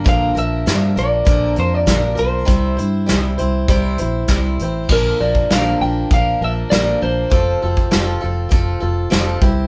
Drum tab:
CC |----------------|----------------|x---------------|----------------|
HH |x-x-x-x-x-x-x-x-|x-x-x-x-x-x-x-x-|----x---x---x---|x---x---x---x---|
SD |----o-------o---|----o-------o---|----o-------o---|----o-------o---|
BD |o-------o---o---|o-------o---o---|o--o----o-------|o--o----o-----o-|